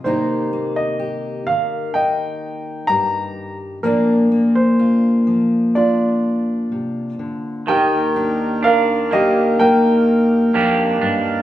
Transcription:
<<
  \new Staff \with { instrumentName = "Grand piano" } { \time 4/4 \key ees \major \tempo 4 = 63 << { c''8. ees''8. f''8 g''4 bes''8. r16 | bes'8. c''4~ c''16 d''4. r8 | g''4 f''8 ees''8 g''4. r8 | } \\ { ees'2 ees''2 | d'2 f'2 | bes'4 bes'8 g'8 bes'4. r8 | } >> }
  \new Staff \with { instrumentName = "Clean electric guitar" } { \time 4/4 \key ees \major r1 | r1 | ees4 d'8 bes4. <bes d' g'>8 d'8 | }
  \new Staff \with { instrumentName = "Steel-string acoustic guitar" } { \time 4/4 \key ees \major << { <ees bes ees' g'>8 bes8 g'4 ees'4 g'4 | <f bes d' f'>8 bes8 f'4 d'2 | g'8 d'4 <bes g'>8 bes2 | } \\ { c4. ees4. g,4 | bes,4. f4. c8 d8 | ees,2. f,8 g,8 | } >> }
  \new Staff \with { instrumentName = "Harmonium" } { \clef bass \time 4/4 \key ees \major r1 | r1 | <ees, ees bes'>1 | }
>>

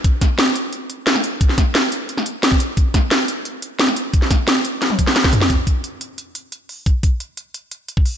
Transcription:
\new DrumStaff \with { instrumentName = "Drums" } \drummode { \time 4/4 \tempo 4 = 176 <hh bd>8 <hh bd sn>8 <hh sn>8 hh8 hh8 hh8 <hh sn>16 sn16 hh8 | <hh bd>16 sn16 <hh bd sn>8 <hh sn>8 hh8 hh16 sn16 hh8 <hh sn>16 bd16 hh8 | <hh bd>8 <hh bd sn>8 <hh sn>8 hh8 hh8 hh8 <hh sn>16 sn16 hh8 | <hh bd>16 sn16 <hh bd sn>8 <hh sn>8 hh8 <hh sn>16 tommh16 <hh bd>16 sn16 <hh sn>16 <bd sn>16 <hh toml>16 sn16 |
<hh bd>8 <hh bd>8 hh8 hh8 hh8 hh8 hh8 hho8 | <hh bd>8 <hh bd>8 hh8 hh8 hh8 hh8 hh16 bd16 hho8 | }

